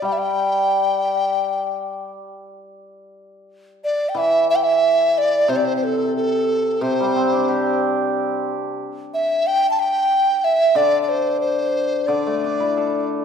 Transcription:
0.02 hammered dulcimer G3, dizi G5
0.12 dizi E5
0.18 dizi G5
3.84 dizi D5
4.09 dizi G5
4.15 hammered dulcimer E3, dizi E5
4.50 dizi E5
4.56 dizi G5
4.64 dizi E5
5.18 dizi D5
5.48 hammered dulcimer C3, dizi C5
5.56 dizi D5
5.65 dizi C5
5.77 dizi C5
5.84 dizi A4
6.16 dizi A4
6.81 hammered dulcimer C3, dizi C5
7.00 hammered dulcimer G3
7.16 hammered dulcimer C4
7.32 hammered dulcimer D4
7.49 hammered dulcimer G4
9.14 dizi E5
9.47 dizi G5
9.71 dizi A5
9.79 dizi G5
10.44 dizi E5
10.75 hammered dulcimer D3, dizi D5
11.02 dizi D5
11.09 dizi C5
11.41 dizi C5
12.07 hammered dulcimer D3, dizi D5
12.26 hammered dulcimer A3
12.44 hammered dulcimer D4
12.60 hammered dulcimer E4
12.77 hammered dulcimer A4

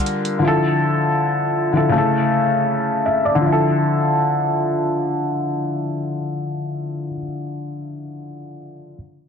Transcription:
Already playing: felt piano D3 G3 F4 A#4
0.00 closed hi-hat
0.06 closed hi-hat
0.25 closed hi-hat
0.39 felt piano D3 F3
0.45 felt piano E4 A4
1.73 felt piano D3 F3 E4
1.77 felt piano A4
1.89 felt piano C#3 A3
1.95 felt piano E4 A4
3.06 felt piano E5
3.25 felt piano D5
3.35 felt piano D3
3.41 felt piano F3
3.47 felt piano E4
3.52 felt piano A4

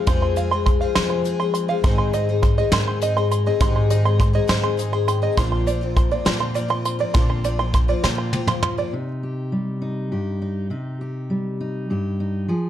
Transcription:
Already playing: felt piano F1 F2 G#3 C4 F4 C5, five-string banjo F5
0.07 felt piano F1 F2 G#3 C4 F4 C5, twelve-string acoustic guitar F2 C3 F3 G#3 C4 G#4, upright bass F2, five-string banjo C6, kick, closed hi-hat
0.22 five-string banjo C6
0.36 twelve-string acoustic guitar F3 G#3 C4 G#4, five-string banjo F5, closed hi-hat
0.51 twelve-string acoustic guitar F3 G#3 C4 G#4, five-string banjo C6
0.66 five-string banjo C6, kick, closed hi-hat
0.81 twelve-string acoustic guitar F3 G#3 C4 G#4, five-string banjo F5
0.95 twelve-string acoustic guitar F2 C3 F3 G#3 C4 G#4, upright bass F3, felt piano G#3 C4 F4 C5, five-string banjo C6, snare, closed hi-hat
1.10 five-string banjo C6
1.24 twelve-string acoustic guitar F3 G#3 C4 G#4, closed hi-hat
1.40 twelve-string acoustic guitar F3 G#3 C4 G#4, five-string banjo C6
1.54 five-string banjo C6, closed hi-hat
1.68 twelve-string acoustic guitar F3 G#3 C4 G#4, five-string banjo F5
1.84 felt piano G#1 G#2 G#3 C4 D#4 C5, twelve-string acoustic guitar G#2 D#3 G#3 C4 D#4 G#4, upright bass G#2, five-string banjo C6, kick, closed hi-hat
1.98 five-string banjo C6
2.13 twelve-string acoustic guitar G#3 C4 D#4 G#4, five-string banjo D#5, closed hi-hat
2.29 twelve-string acoustic guitar G#3 C4 D#4 G#4
2.43 five-string banjo C6, kick, closed hi-hat
2.58 twelve-string acoustic guitar G#3 C4 D#4 G#4, five-string banjo D#5
2.71 twelve-string acoustic guitar G#2 D#3 G#3 C4 D#4 G#4, upright bass G#2, felt piano G#3 C4 D#4 A#4, five-string banjo C6, snare, closed hi-hat
2.88 five-string banjo C6
3.02 twelve-string acoustic guitar G#3 C4 D#4 G#4, five-string banjo D#5, closed hi-hat
3.17 twelve-string acoustic guitar G#3 C4 D#4 G#4, five-string banjo C6
3.31 five-string banjo C6, closed hi-hat
3.46 twelve-string acoustic guitar G#3 C4 D#4 G#4, five-string banjo D#5
3.60 felt piano G#1 G#2 G#3 C4 D#4 G4, upright bass G#2, twelve-string acoustic guitar G#2 D#3 G#3 C4 D#4 G#4, five-string banjo C6, kick, closed hi-hat
3.76 five-string banjo C6
3.90 twelve-string acoustic guitar G#3 C4 D#4 G#4, five-string banjo D#5, closed hi-hat
4.05 twelve-string acoustic guitar G#3 C4 D#4 G#4, five-string banjo C6
4.20 five-string banjo C6, kick, closed hi-hat
4.33 twelve-string acoustic guitar G#3 C4 D#4 G#4, five-string banjo D#5
4.48 twelve-string acoustic guitar G#2 D#3 G#3 C4 D#4 G#4, upright bass G#2, felt piano G#3 C4 D#4 C5, five-string banjo C6, snare, closed hi-hat
4.63 five-string banjo C6
4.77 twelve-string acoustic guitar G#3 C4 D#4 G#4, felt piano D#5, closed hi-hat
4.93 twelve-string acoustic guitar G#3 C4 D#4 G#4, five-string banjo C6
5.08 felt piano G5, five-string banjo C6, closed hi-hat
5.22 twelve-string acoustic guitar G#3 C4 D#4 G#4, five-string banjo D#5
5.37 upright bass A#1, felt piano A#1 A#2 A#3 D4 F4 C5, twelve-string acoustic guitar A#2 D3 F3 A#3 C4 F4, five-string banjo C6, kick, closed hi-hat
5.52 five-string banjo C6
5.66 twelve-string acoustic guitar F3 A#3 C4 F4, five-string banjo D5, closed hi-hat
5.81 twelve-string acoustic guitar F3 A#3 C4 F4
5.96 five-string banjo C6, kick, closed hi-hat
6.11 twelve-string acoustic guitar F3 A#3 C4 F4, five-string banjo D5
6.25 twelve-string acoustic guitar A#2 D3 F3 A#3 C4 F4, upright bass A#2, felt piano A#3 D4 F4 C5, five-string banjo C6, snare, closed hi-hat
6.40 five-string banjo C6
6.54 twelve-string acoustic guitar F3 A#3 C4 F4, five-string banjo D5, closed hi-hat
6.68 twelve-string acoustic guitar F3 A#3 C4 F4, five-string banjo C6
6.85 five-string banjo C6, closed hi-hat
6.99 twelve-string acoustic guitar F3 A#3 C4 F4, five-string banjo D5
7.14 upright bass A#1, felt piano A#1 A#2 A#3 D4 F4 C5, twelve-string acoustic guitar A#2 D3 F3 A#3 C4 F4, five-string banjo C6, kick, closed hi-hat
7.30 five-string banjo C6
7.44 twelve-string acoustic guitar F3 A#3 C4 F4, five-string banjo D5, closed hi-hat
7.59 twelve-string acoustic guitar F3 A#3 C4 F4, five-string banjo C6
7.74 five-string banjo C6, kick, closed hi-hat
7.88 twelve-string acoustic guitar F3 A#3 C4 F4, five-string banjo D5
8.02 upright bass A#2, twelve-string acoustic guitar A#2 D3 F3 A#3 C4 F4, felt piano A#3 D4 F4 C5, five-string banjo C6, snare
8.18 five-string banjo C6
8.32 twelve-string acoustic guitar F3 A#3 C4 F4, felt piano G5, high tom
8.47 twelve-string acoustic guitar F3 A#3 C4 F4, felt piano F5, five-string banjo C6, mid tom
8.63 felt piano F5, five-string banjo C6, mid tom
8.78 twelve-string acoustic guitar F3 A#3 C4 F4, five-string banjo D5
8.93 steel-string acoustic guitar C3 D#4
9.23 steel-string acoustic guitar G4
9.52 steel-string acoustic guitar G3
9.82 steel-string acoustic guitar D#4
10.12 steel-string acoustic guitar G2 G4
10.42 steel-string acoustic guitar D#4
10.70 steel-string acoustic guitar C3 D#4
11.01 steel-string acoustic guitar G4
11.30 steel-string acoustic guitar G3
11.61 steel-string acoustic guitar D#4
11.90 steel-string acoustic guitar G2 G4
12.20 steel-string acoustic guitar D#4
12.48 steel-string acoustic guitar F3 G#4

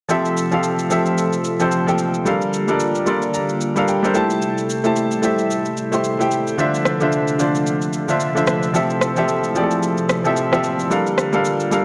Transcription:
0.09 analog synth pad C3 F3 A3 F4 A4, grand piano F3 C4 G4 A4 E5, shaker
0.25 shaker
0.37 shaker
0.51 grand piano F3 C4 G4 A4 F5, shaker
0.63 shaker
0.79 shaker
0.90 grand piano F3 C4 G4 A4 E5, shaker
1.06 shaker
1.18 shaker
1.33 shaker
1.44 shaker
1.60 grand piano F3 C4 G4 A4 C5, shaker
1.72 shaker
1.87 grand piano F3 C4 G4 A4 G5, shaker
1.98 shaker
2.14 shaker
2.25 analog synth pad D3 G3 A#3 F4 G4, grand piano G3 D4 A4 A#4 F5, shaker
2.41 shaker
2.53 shaker
2.68 grand piano G3 D4 A4 A#4 D5, shaker
2.80 shaker
2.95 shaker
3.06 grand piano G3 D4 A4 A#4 D5 C6, shaker
3.22 shaker
3.34 grand piano A#5, shaker
3.49 shaker
3.61 shaker
3.76 grand piano G3 D4 A4 A#4 F5, shaker
3.88 grand piano G5, shaker
4.03 grand piano G3 D4 A4 A#4 C5, shaker
4.14 analog synth pad C3 G3 A3 E4 A4, grand piano A3 E4 G4 C5 A5, shaker
4.30 shaker
4.42 shaker
4.58 shaker
4.69 shaker
4.84 grand piano A3 E4 G4 C5 A5, shaker
4.96 shaker
5.11 shaker
5.22 grand piano A3 E4 G4 C5 E5, shaker
5.38 shaker
5.50 shaker
5.65 shaker
5.77 shaker
5.92 grand piano A3 E4 G4 C5 C6, shaker
6.04 shaker
6.19 grand piano A3 E4 G4 C5 G5, shaker
6.31 shaker
6.47 shaker
6.57 analog synth pad C3 F3 A3 D4, grand piano D3 D4 F4 C5 E5, shaker
6.74 shaker
6.85 cross-stick, shaker
7.00 grand piano D3 D4 F4 C5 E5, shaker
7.12 shaker
7.28 shaker
7.39 grand piano D3 D4 F4 C5 D5, shaker
7.55 shaker
7.67 shaker
7.82 shaker
7.93 shaker
8.08 grand piano D3 D4 F4 C5 E5, shaker
8.20 shaker
8.35 grand piano D3 D4 F4 C5 E5, shaker
8.47 cross-stick, shaker
8.63 shaker
8.74 grand piano F3 C4 G4 A4 E5, analog synth pad E4, shaker
8.90 shaker
9.01 cross-stick, shaker
9.16 grand piano F3 C4 G4 A4 E5, shaker
9.28 shaker
9.44 shaker
9.55 grand piano F3 C4 G4 G#4 D5, shaker
9.63 grand piano A4
9.71 shaker
9.83 shaker
9.98 shaker
10.09 cross-stick, shaker
10.24 grand piano F3 C4 G4 A4 E5, shaker
10.37 shaker
10.51 grand piano F3 C4 G4 A4 E5, cross-stick, shaker
10.63 shaker
10.79 shaker
10.90 analog synth pad D3 G3 A#3 F4 G4, grand piano G3 D4 A4 A#4 F5, shaker
11.07 shaker
11.18 cross-stick, shaker
11.33 grand piano G3 D4 A4 A#4 F5, shaker
11.45 shaker
11.60 shaker
11.71 grand piano G3 D4 A4 A#4 F5, shaker

